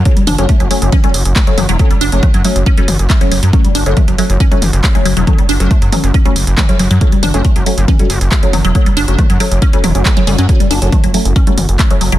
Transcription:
<<
  \new Staff \with { instrumentName = "Synth stab" } { \time 4/4 \key fis \phrygian \tempo 4 = 138 <fis a cis'>16 r8 <fis a cis'>16 r8 <fis a cis'>16 r8 <fis a cis'>16 r8. <fis a cis'>16 r8 | <fis a cis'>16 r8 <fis a cis'>16 r8 <fis a cis'>16 r8 <fis a cis'>16 r8. <fis a cis'>16 r8 | <fis a cis'>16 r8 <fis a cis'>16 r8 <fis a cis'>16 r8 <fis a cis'>16 r8. <fis a cis'>16 r8 | <fis a cis'>16 r8 <fis a cis'>16 r8 <fis a cis'>16 r8 <fis a cis'>16 r8. <fis a cis'>16 r8 |
<fis a cis'>16 r8 <fis a cis'>16 r8 <fis a cis'>16 r8 <fis a cis'>16 r8. <fis a cis'>16 r8 | <fis a cis'>16 r8 <fis a cis'>16 r8 <fis a cis'>16 r8 <fis a cis'>16 r16 <fis a cis'>16 r16 <fis a cis'>16 <fis a cis'>16 r16 | <fis a cis'>16 r8 <fis a cis'>16 r8 <fis a cis'>16 r8 <fis a cis'>16 r8. <fis a cis'>16 r8 | }
  \new Staff \with { instrumentName = "Synth arpeggio sound" } { \clef bass \time 4/4 \key fis \phrygian fis16 g16 d'16 r16 a16 fis16 fis16 r16 cis'16 g16 r8 a16 fis16 fis16 fis16 | fis16 g16 d'16 r16 a16 fis16 fis16 r16 cis'16 g16 r8 a16 fis16 fis16 fis16 | fis16 g16 d'16 r16 a16 fis16 fis16 r16 cis'16 g16 r8 a16 fis16 fis16 fis16 | fis16 g16 d'16 r16 a16 fis16 fis16 r16 cis'16 g16 r8 a16 fis16 fis16 fis16 |
fis16 g16 d'16 r16 a16 fis16 fis16 r16 cis'16 g16 r8 a16 fis16 fis16 fis16 | fis16 g16 d'16 r16 a16 fis16 fis16 r16 cis'16 g16 fis16 r16 a16 fis16 g16 cis'16 | fis16 g16 d'16 r16 a16 fis16 fis16 r16 cis'16 g16 r8 a16 fis16 fis16 fis16 | }
  \new Staff \with { instrumentName = "Analog synth bass" } { \clef bass \time 4/4 \key fis \phrygian r8 fis,,16 fis,,16 r16 fis,,16 r16 fis,,16 r8 fis,,16 fis,,16 r8 fis,,16 e,,16 | r8 fis,,16 fis,,16 r16 fis,16 r16 fis,,16 r8 fis,,16 fis,,16 r8 fis,,16 fis,16 | r8 fis,,16 fis,,16 r16 fis,,16 r16 fis,,16 r8 fis,,16 fis,,16 r8 fis,,16 e,,16 | r8 fis,,16 fis,,16 r16 fis,16 r16 fis,,16 r8 fis,,16 fis,,16 r8 fis,,16 fis,16 |
r8 fis,,16 fis,,16 r16 fis,,16 r16 fis,,16 r8 fis,,16 fis,,16 r8 fis,,16 e,,16 | r8 fis,,16 fis,,16 r16 fis,16 r16 fis,,16 r8 e,,16 fis,,16 r8 fis,,16 fis,16 | r8 fis,,16 fis,,16 r16 fis,,16 r16 fis,,16 r8 fis,,16 fis,,16 r8 fis,,16 e,,16 | }
  \new DrumStaff \with { instrumentName = "Drums" } \drummode { \time 4/4 <hh bd>16 hh16 <hho toml>16 hh16 <hh bd>16 hh16 hho16 hh16 <hh bd toml>16 hh16 hho16 hh16 <hc hh bd>16 hh16 <hho toml>16 hh16 | <hh bd>16 hh16 hho16 hh16 <hh bd toml>16 hh16 hho16 hh16 <hh bd>16 hh16 <hho toml>16 hh16 <hc hh bd>16 hh16 hho16 hh16 | <hh bd>16 hh16 hho16 hh16 <hh bd toml>16 hh16 hho16 hh16 <hh bd>16 hh16 <hho toml>16 hh16 <hc hh bd>16 hh16 hho16 hh16 | <hh bd toml>16 hh16 hho16 hh16 <hh bd>16 hh16 <hho toml>16 hh16 <hh bd>16 hh16 hho16 hh16 <hc hh bd toml>16 hh16 hho16 hh16 |
<hh bd>16 hh16 <hho toml>16 hh16 <hh bd>16 hh16 hho16 hh16 <hh bd toml>16 hh16 hho16 hh16 <hc hh bd>16 hh16 <hho toml>16 hh16 | <hh bd>16 hh16 hho16 hh16 <hh bd toml>16 hh16 hho16 hh16 <hh bd>16 hh16 <hho toml>16 hh16 <hc hh bd>16 hh16 hho16 hh16 | <hh bd>16 hh16 hho16 hh16 <hh bd toml>16 hh16 hho16 hh16 <hh bd>16 hh16 <hho toml>16 hh16 <hc hh bd>16 hh16 hho16 hh16 | }
>>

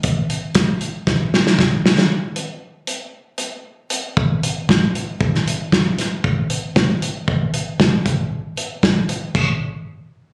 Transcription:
\new DrumStaff \with { instrumentName = "Drums" } \drummode { \time 4/4 \tempo 4 = 116 <hh bd>8 hh8 <hh bd sn>8 hh8 <bd sn>8 sn16 sn16 <bd sn>8 sn16 sn16 | r8 hh8 r8 hh8 r8 hh8 r8 hh8 | bd8 hh8 <bd sn>8 hh8 bd16 sn16 hh8 <bd sn>8 <hh sn>8 | bd8 hh8 <bd sn>8 hh8 bd8 hh8 <bd sn>8 <hh bd>8 |
r8 hh8 <bd sn>8 hh8 <cymc bd>4 r4 | }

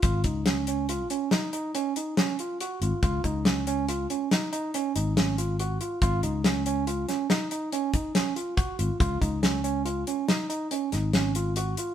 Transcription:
<<
  \new Staff \with { instrumentName = "Tine electric piano" } { \time 7/4 \key des \major \tempo 4 = 141 f'8 ees'8 des'8 des'8 f'8 des'8 ees'8 ees'8 des'8 ees'8 des'8 f'8 ges'8 f'8 | f'8 ees'8 des'8 des'8 f'8 des'8 ees'8 ees'8 des'8 ees'8 des'8 f'8 ges'8 f'8 | f'8 ees'8 des'8 des'8 f'8 des'8 ees'8 ees'8 des'8 ees'8 des'8 f'8 ges'8 f'8 | f'8 ees'8 des'8 des'8 f'8 des'8 ees'8 ees'8 des'8 ees'8 des'8 f'8 ges'8 f'8 | }
  \new Staff \with { instrumentName = "Fretless electric bass" } { \clef bass \time 7/4 \key des \major aes,,8 des,2 r1 aes,,16 r16 | des,8 des,2 r2 aes,,2 r8 | aes,,8 des,2 r1 aes,,16 r16 | des,8 des,2 r2 aes,,2 r8 | }
  \new DrumStaff \with { instrumentName = "Drums" } \drummode { \time 7/4 <hh bd>8 <hh bd>8 <hh sn>8 hh8 hh8 hh8 <hh sn>8 hh8 hh8 hh8 <hh sn>8 hh8 hh8 hh8 | <hh bd>8 <hh bd>8 <hh sn>8 hh8 hh8 hh8 <hh sn>8 hh8 hh8 hh8 <hh sn>8 hh8 hh8 hh8 | <hh bd>8 hh8 <hh sn>8 hh8 hh8 <hh sn>8 <hh sn>8 hh8 hh8 <hh bd>8 <hh sn>8 hh8 <hh bd>8 hh8 | <hh bd>8 <hh bd>8 <hh sn>8 hh8 hh8 hh8 <hh sn>8 hh8 hh8 <hh sn>8 <hh sn>8 hh8 hh8 hh8 | }
>>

